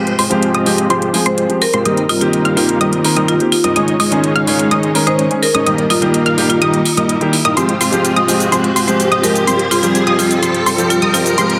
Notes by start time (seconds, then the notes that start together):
Already playing: G#3 C4 F4 G4 C5 C6, riser
0.07 closed hi-hat
0.19 G#3 C4 F4 G4 C5 C6, open hi-hat
0.30 F3 G#3 C4 G4, closed hi-hat
0.43 closed hi-hat
0.54 G#3 C4 F4 G4 D#5 D#6, closed hi-hat
0.66 F3 G#3 C4 G4, open hi-hat
0.78 closed hi-hat
0.90 F3 G#3 C4 F4 G4 C5 C6, closed hi-hat
1.02 closed hi-hat
1.13 F3 G#3 C4 G#4, open hi-hat
1.26 G#3 C4 F4 G4 C5 C6, closed hi-hat
1.38 closed hi-hat
1.49 F3 G#3 C4 G4, closed hi-hat
1.62 A#4, open hi-hat
1.73 G#3 C4 F4 G4 C5 C6, closed hi-hat
1.85 D#3 G3 A#3 C4 D#4 G4 A#4 D#5 D#6, closed hi-hat
1.97 closed hi-hat
2.09 G3 C4 D#4 F4 A#4 D#5 D#6, open hi-hat
2.21 D#3 A#3 C4 F4 G4, closed hi-hat
2.33 closed hi-hat
2.45 G3 C4 D#4 A#4 F5 F6, closed hi-hat
2.56 D#3 A#3 C4 F4 G4, open hi-hat
2.69 closed hi-hat
2.80 D#3 G3 A#3 C4 D#4 G4 A#4 D#5 D#6, closed hi-hat
2.93 closed hi-hat
3.04 D#3 A#3 C4 A#4, open hi-hat
3.16 G3 C4 D#4 A#4 D#5 D#6, closed hi-hat
3.28 F4, closed hi-hat
3.40 D#3 A#3 C4 G4, closed hi-hat
3.52 F4, open hi-hat
3.64 G3 C4 D#4 A#4 D#5 D#6, closed hi-hat
3.75 D#3 G#3 C#4 D#4 G#4 C#5 D#5 D#6, closed hi-hat
3.88 closed hi-hat
4.00 G#3 C#4 D#4 C#5 D#5 D#6, open hi-hat
4.11 D#3 G#3 C#4 G#4, closed hi-hat
4.24 closed hi-hat
4.36 G#3 C#4 D#4 C#5 F5 F6, closed hi-hat
4.47 D#3 G#3 C#4 G#4, open hi-hat
4.59 closed hi-hat
4.71 D#3 G#3 C#4 D#4 G#4 C#5 D#5 D#6, closed hi-hat
4.83 closed hi-hat
4.94 D#3 G#3 C#4 A#4, open hi-hat
5.07 G#3 C#4 D#4 C5 C#5 D#5 D#6, closed hi-hat
5.19 closed hi-hat
5.30 D#3 G#3 C#4 G#4, closed hi-hat
5.43 A#4, open hi-hat
5.54 G#3 C#4 D#4 C#5 D#5 D#6, closed hi-hat
5.66 D#3 G3 A#3 D#4 G4 A#4 D#5 D#6, closed hi-hat
5.78 closed hi-hat
5.90 G3 A#3 D#4 F4 A#4 D#5 D#6, open hi-hat
6.01 D#3 G3 A#3 F4 G4, closed hi-hat
6.14 closed hi-hat
6.26 G3 A#3 D#4 A#4 F5 F6, closed hi-hat
6.37 D#3 G3 A#3 G4, open hi-hat
6.50 F4, closed hi-hat
6.61 D#3 G3 A#3 D#4 G4 A#4 D#5 D#6, closed hi-hat
6.74 closed hi-hat
6.85 open hi-hat
6.97 G3 A#3 D#4 A#4 D#5 D#6, closed hi-hat
7.09 closed hi-hat
7.21 D#3 G3 A#3 G4, closed hi-hat
7.33 open hi-hat
7.45 G3 A#3 D#4 A#4 D#5 D#6, closed hi-hat
7.56 F3 G#3 C4 F4 G4 C5 C6, closed hi-hat, shaker
7.69 closed hi-hat
7.81 G#3 C4 F4 G4 C5 C6, open hi-hat, shaker
7.92 F3 G#3 C4 G4, closed hi-hat, shaker
8.05 closed hi-hat, shaker
8.16 G#3 C4 F4 G4 D#5 D#6, closed hi-hat
8.28 F3 G#3 C4 G4, open hi-hat, shaker
8.40 closed hi-hat, shaker
8.52 F3 G#3 C4 F4 G4 C5 C6, closed hi-hat, shaker
8.64 closed hi-hat
8.76 G#3 C4 F4 G4 C5 C6, open hi-hat, shaker
8.87 F3 G#3 C4 G4 C5, closed hi-hat, shaker
9.00 closed hi-hat, shaker
9.12 G#3 C4 F4 G4 D#5 D#6, closed hi-hat
9.23 F3 G#3 C4 G4 A#4, open hi-hat, shaker
9.35 closed hi-hat, shaker
9.47 F3 G3 C4 F4 G4 C5 C6, closed hi-hat, shaker
9.59 closed hi-hat
9.71 G3 C4 F4 G4 C5 C6, open hi-hat, shaker
9.82 F3 G3 C4 F4 G4, closed hi-hat, shaker
9.95 closed hi-hat, shaker
10.07 G3 C4 F4 G4 D#5 D#6, closed hi-hat
10.18 F3 G3 C4 F4 G4, open hi-hat, shaker
10.31 closed hi-hat, shaker
10.42 F3 G3 C4 F4 G4 C5 C6, closed hi-hat, shaker
10.54 closed hi-hat
10.66 G3 C4 F4 G4 C5 C6, open hi-hat, shaker
10.78 F3 G3 C4 G4, closed hi-hat, shaker
10.90 F4, closed hi-hat, shaker
11.02 G3 C4 F4 G4 D#5 D#6, closed hi-hat
11.13 F3 G3 C4 F4 G4, open hi-hat, shaker
11.26 closed hi-hat, shaker
11.37 F3 G#3 C4 F4 G4 C5 C6, closed hi-hat, shaker
11.50 closed hi-hat